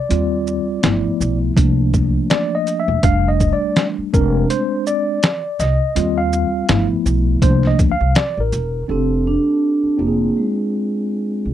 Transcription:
Already playing: tine electric piano D5
0.09 upright bass D#2, tine electric piano G3 C4 F4, closed hi-hat
0.47 shaker
0.83 upright bass G1, tine electric piano F3 A3 B3 E4, snare, closed hi-hat
1.06 muted upright bass stroke
1.20 upright bass B1, shaker
1.56 upright bass C2, tine electric piano F3 A3 A#3 D4, kick, closed hi-hat
1.94 kick, shaker
2.30 tine electric piano D5, snare, closed hi-hat
2.55 tine electric piano D#5
2.67 closed hi-hat, shaker
2.80 tine electric piano E5
2.88 upright bass E1
3.03 upright bass F1, tine electric piano G3 A3 D4 F5, kick, closed hi-hat
3.28 tine electric piano D#5
3.40 kick, shaker
3.53 tine electric piano D5
3.76 snare, closed hi-hat
3.98 muted upright bass stroke
4.13 upright bass F1, tine electric piano G#3 C4 D4 A#4, kick, shaker
4.50 tine electric piano C5, closed hi-hat
4.87 tine electric piano D5, shaker
5.23 snare, closed hi-hat
5.59 upright bass C2, tine electric piano D#5, snare, closed hi-hat, shaker
5.96 upright bass D#2, tine electric piano G3 C4 F4, closed hi-hat
6.18 tine electric piano F5
6.33 shaker
6.69 upright bass G1, tine electric piano F3 A3 B3 E4, snare, closed hi-hat
6.91 muted upright bass stroke
7.06 upright bass B1, shaker
7.42 upright bass C2, tine electric piano F3 A3 A#3 D4 C5, kick, closed hi-hat
7.63 snare
7.67 tine electric piano D#5
7.79 upright bass D2, kick, closed hi-hat, shaker
7.91 tine electric piano F5
8.01 upright bass C2
8.15 tine electric piano D5, snare, closed hi-hat
8.37 upright bass A1, tine electric piano A#4
8.52 upright bass E1, closed hi-hat, shaker
8.88 upright bass F1, tine electric piano C4 D4 G4 A4, vibraphone C4
9.27 vibraphone D4
9.83 muted upright bass stroke
9.97 upright bass F1, vibraphone A#3, tine electric piano C4 D4 F4 G4
10.07 tine electric piano G#4
10.37 vibraphone G#3
11.45 upright bass C2

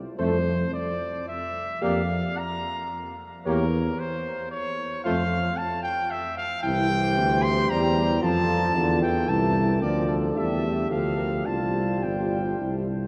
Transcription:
0.18 tuba F2, trombone A3, french horn A4, flugelhorn C5, trumpet C5
0.74 trumpet D5
1.28 trumpet E5
1.82 tuba F2, trombone A#3, french horn G4, flugelhorn D5, trumpet F5
2.38 trumpet A#5
3.45 tuba E2, trombone A#3, french horn G4, trumpet A#4, flugelhorn C#5
3.99 trumpet C5
4.51 trumpet C#5
5.04 tuba F2, trombone A3, french horn F4, flugelhorn C5, trumpet F5
5.57 trumpet A5
5.83 trumpet G5
6.11 trumpet E5
6.37 trumpet F5
6.63 tuba C2, trombone E3, french horn E4, flugelhorn C5, trumpet G5
6.90 french horn G4
7.17 tuba D2
7.43 trumpet C6
7.70 tuba E2, trombone G3, trumpet A#5
7.96 trombone G3
8.22 tuba F2, trombone F3, french horn F4, flugelhorn A4, trumpet A5
8.75 tuba E2, trombone D3, french horn F4, flugelhorn A4
9.02 trombone E3, trumpet G5
9.28 tuba C2, french horn E4, trumpet A5
9.81 tuba D2, trombone F3, french horn D4, flugelhorn A#4, trumpet D5
10.08 flugelhorn A4
10.35 tuba E2, trombone G3, french horn G4, trumpet E5
10.64 trombone A3
10.89 tuba D2, trombone F3, flugelhorn A4, trumpet F5
11.17 flugelhorn A#4
11.46 tuba C2, trombone G3, french horn F4, flugelhorn C5, trumpet A5
12.03 tuba G1, trumpet G5
12.59 tuba C2, trombone G3, french horn E4, flugelhorn C5

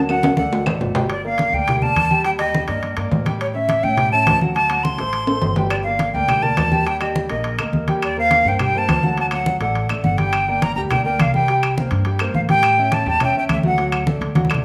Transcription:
Already playing: upright bass D2
0.08 grand piano F#3 F#4 F#5, flute F#5, high conga, high timbale, claves
0.23 high conga, high timbale
0.37 upright bass D2, grand piano A3 A4 D5, flute F#5, high conga, high timbale
0.52 high conga, low timbale
0.66 upright bass A1, grand piano A3 A4 D5, high conga, low timbale, claves
0.80 upright bass G1, low conga, low timbale
0.95 grand piano G3 G4 G5, low conga, low timbale
1.10 flute D5, high conga, high timbale
1.24 grand piano A#3 A#4 D5, flute F5, high conga
1.38 high conga, high timbale
1.53 upright bass D2, grand piano A#3 A#4 D5, flute G5, high conga
1.68 grand piano G3 G4 G5, high conga, low conga, high timbale
1.82 grand piano A#3 A#4 D5, flute A5, high conga, low conga
1.96 upright bass D#2, high conga, high timbale
2.10 grand piano G3 G4 G5, high conga
2.24 grand piano G3 G4 G5, flute G5, high conga, high timbale
2.39 grand piano G3 G4 G5, flute D#5, high conga, high timbale
2.55 high conga
2.67 upright bass G2, grand piano A#3 A#4 D5, flute D#5, high timbale
2.83 high conga, high timbale
2.97 upright bass G2, grand piano A#3 A#4 D5, high conga, high timbale
3.11 upright bass A2, high conga, low timbale
3.25 grand piano G3 G4 G5, high conga, high timbale
3.41 flute C#5, high conga, high timbale
3.54 grand piano C#4 C#5 E5, flute E5, high conga
3.69 high conga, high timbale
3.83 upright bass A2, grand piano C#4 C#5 E5, flute G5, high conga
3.97 grand piano G3 G4 G5, high conga, low conga, high timbale
4.12 grand piano C#4 C#5 E5, flute A5, high conga
4.26 upright bass D2, high conga, high timbale, low timbale
4.41 grand piano F#3 F#4 F#5, high conga
4.55 grand piano F#3 F#4 F#5, flute A5, high conga, high timbale
4.70 grand piano F#3 F#4 F#5, high conga, high timbale
4.83 flute C6, high conga
4.98 upright bass A1, grand piano A3 A4 C5, high conga, high timbale
5.13 high conga, high timbale
5.27 grand piano A3 A4 C5, high conga, high timbale
5.42 upright bass G1, high conga, low timbale
5.56 grand piano G3 G4 G5, high conga, low timbale
5.70 flute D5, high timbale, claves
5.84 grand piano A#3 A#4 D5, flute F5, high conga
5.99 high conga, high timbale
6.13 upright bass D2, grand piano A#3 A#4 D5, flute G5, high conga
6.28 grand piano G3 G4 G5, high conga, low conga, high timbale, claves
6.42 grand piano A#3 A#4 D5, flute A5, high conga, low conga
6.57 upright bass D#2, high conga, high timbale, low timbale, claves
6.71 grand piano G3 G4 G5, high conga
6.86 grand piano G3 G4 G5, flute G5, high timbale
7.00 grand piano G3 G4 G5, flute D#5, high conga, high timbale, claves
7.16 high conga
7.29 upright bass A#1, grand piano A#3 A#4 D#5, flute D#5, high conga, high timbale
7.44 high conga, high timbale
7.58 upright bass D2, grand piano A#3 A#4 D#5, high conga, high timbale, claves
7.73 upright bass D#2, high conga
7.88 grand piano G3 G4 G5, high conga, high timbale
8.02 flute D5, high conga, high timbale, claves
8.17 grand piano A#3 A#4 C5, flute F5, high conga
8.31 high conga, high timbale
8.45 upright bass G2, grand piano A#3 A#4 C5, flute G5, high conga
8.59 grand piano G3 G4 G5, flute G5, high conga, low conga, high timbale, claves
8.75 grand piano A#3 A#4 C5, flute A5, high conga
8.88 upright bass D2, high conga, high timbale, low timbale, claves
9.03 grand piano F#3 F#4 F#5, high conga
9.17 grand piano F#3 F#4 F#5, flute A5, high conga, high timbale
9.31 grand piano F#3 F#4 F#5, flute F#5, high conga, high timbale, claves
9.46 high conga
9.60 upright bass A1, grand piano A3 A4 D5, flute F#5, high conga, high timbale
9.75 high conga, high timbale
9.89 upright bass A1, grand piano A3 A4 D5, high conga, high timbale, claves
10.03 upright bass G1, flute F#5, high conga
10.17 grand piano G3 G4 G5, flute G5, high conga, high timbale
10.33 high conga, high timbale, claves
10.48 grand piano A#3 A#4 D5, high conga
10.62 flute A#5, high conga, high timbale
10.75 upright bass D2, grand piano G3 G4 G5, flute A#5, high conga
10.90 grand piano A#3 A#4 D5, flute G5, high conga, low conga, high timbale, claves
11.05 grand piano A#3 A#4 D5, flute G5, high conga
11.19 upright bass C2, flute F5, high conga, high timbale, claves
11.34 grand piano G3 G4 G5, flute G5, high conga
11.48 grand piano G3 G4 G5, high conga, high timbale
11.63 high conga, high timbale, claves
11.78 grand piano A#3 A#4 C5, high conga
11.91 upright bass G2, high conga, high timbale
12.05 grand piano G3 G4 G5, high conga, high timbale
12.19 grand piano A#3 A#4 C5, high conga, high timbale, claves
12.34 upright bass A2, flute F5, high conga
12.49 grand piano G3 G4 G5, flute G5, high conga, high timbale
12.63 high conga, high timbale, claves
12.78 grand piano C#4 C#5 E5, high conga
12.92 flute A5, high conga, high timbale
13.06 upright bass E2, grand piano G3 G4 G5, flute A5, high conga
13.20 grand piano C#4 C#5 E5, flute G5, high conga, low conga, high timbale, claves
13.36 grand piano C#4 C#5 E5, flute G5, high conga
13.49 upright bass D2, high conga, high timbale, claves
13.53 flute E5
13.63 grand piano F#3 F#4 F#5, flute F#5, high conga
13.78 grand piano F#3 F#4 F#5, high conga, high timbale
13.92 high conga, high timbale, claves
14.07 grand piano A3 A4 D5, high conga
14.21 upright bass D2, high conga, high timbale
14.35 grand piano F#3 F#4 F#5, high conga, high timbale
14.45 high conga
14.50 grand piano A3 A4 D5, high timbale, claves
14.54 low conga

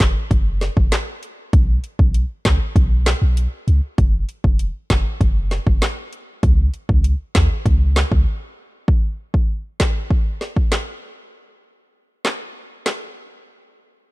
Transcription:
0.00 808-style bass F#1, kick, snare, clap, closed hi-hat
0.31 808-style bass F#1, kick, closed hi-hat
0.61 snare, closed hi-hat
0.77 808-style bass F#1, kick
0.92 snare, clap, closed hi-hat
1.23 closed hi-hat
1.53 808-style bass B1, kick, closed hi-hat
1.84 closed hi-hat
1.99 808-style bass B1, kick
2.14 closed hi-hat
2.45 808-style bass C#2, kick, snare, clap, closed hi-hat
2.76 808-style bass B1, kick, closed hi-hat
3.06 snare, clap, closed hi-hat
3.22 808-style bass B1
3.37 closed hi-hat
3.68 808-style bass C#2, closed hi-hat
3.98 808-style bass F#1, kick, closed hi-hat
4.29 closed hi-hat
4.44 808-style bass F1, kick
4.59 closed hi-hat
4.90 808-style bass F#1, kick, snare, clap, closed hi-hat
5.21 808-style bass F#1, kick, closed hi-hat
5.51 snare, closed hi-hat
5.67 808-style bass F#1, kick
5.82 snare, clap, closed hi-hat
6.13 closed hi-hat
6.43 808-style bass C#2, kick, closed hi-hat
6.74 closed hi-hat
6.89 808-style bass C#2, kick
7.04 closed hi-hat
7.35 808-style bass D#2, kick, snare, clap, closed hi-hat
7.66 808-style bass C#2, kick, closed hi-hat
7.96 snare, clap, closed hi-hat
8.12 808-style bass C#2, kick
8.88 kick
9.34 kick
9.80 kick, snare, clap
10.10 kick
10.41 snare
10.56 kick
10.72 snare, clap
12.25 snare, clap
12.86 snare, clap

